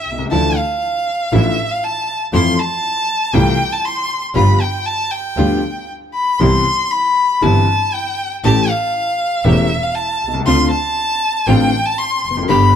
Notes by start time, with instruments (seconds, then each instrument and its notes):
Already playing: violin E5
0.05 double bass C2
0.12 upright piano B1
0.18 upright piano C2
0.25 upright piano C#2
0.31 double bass D2, upright piano D2 D3 E3 A3 D4 F4, string section F3 D4 E4, violin A5
0.57 violin F5
1.32 double bass A1, upright piano A1 A2 E3 A3 D4 F4, string section F3 D4 E4, violin E5
1.71 violin F5
1.84 violin A5
2.33 double bass F2, upright piano F2 E3 F3 A3 C4 F4, string section F3 A3 E4, violin C6
2.60 violin A5
3.34 double bass C2, upright piano C2 C3 E3 A3 C4 F4, string section F3 A3 E4, violin G5
3.73 violin A5
3.85 violin C6
4.34 double bass G1, upright piano G1 G2 F3 B3 D4 G4, string section G3 B3 F4, violin B5
4.61 violin G5
4.86 violin A5
5.12 violin G5
5.36 double bass D2, upright piano D2 D3 F3 B3 D4 G4, string section G3 B3 F4
6.14 violin B5
6.39 double bass C2, upright piano C2 C3 E3 B3 C4 G4, string section B3 C4 E4, violin C6
6.91 violin B5
7.42 double bass G1, upright piano G1 G2 E3 B3 C4 G4, string section B3 C4 E4, violin A5
7.94 violin G5
8.44 double bass A1, upright piano A1 A2 E3 A3 C#4 G4, string section A3 C#4 G4, violin A5
8.70 violin F5
9.44 upright piano E1 E2 E3 A3 C#4 G4, double bass E1, string section A3 C#4 G4, violin E5
9.83 violin F5
9.95 violin A5
10.21 double bass C2
10.27 upright piano B1
10.34 upright piano C2
10.40 upright piano C#2
10.46 double bass D2, upright piano D2 D3 A3 C4 F4, string section C4 D4 F4, violin C6
10.71 violin A5
11.47 upright piano A1 A2 D3 A3 C4 F4, double bass A1, string section C4 D4 F4, violin G5
11.86 violin A5
11.98 violin C6
12.23 double bass F1
12.30 upright piano E2
12.37 upright piano F2
12.43 upright piano F#2
12.49 upright piano G1 G2 D3 G3 B3 G4, double bass G1, string section B3 D4 G4, violin B5